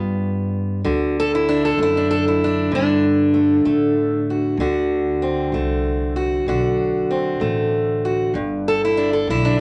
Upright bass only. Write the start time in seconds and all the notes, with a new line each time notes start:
Already playing: G2
0.85 D2
1.78 F#2
2.71 G2
3.65 A2
4.57 D2
5.52 C2
6.46 B1
7.40 A1
8.34 G1
9.27 B1